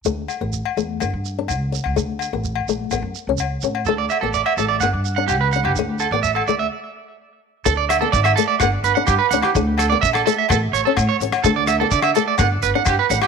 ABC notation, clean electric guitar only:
X:1
M:4/4
L:1/16
Q:1/4=127
K:D
V:1 name="Clean electric guitar"
z16 | z16 | A d e A d e A d f z2 f G B f G | z2 A d e A d e z8 |
A d e A d e A d f z B f G B f G | z2 A d e A A e A z c A z c z2 | A d e A d e A d f z B f G B f G |]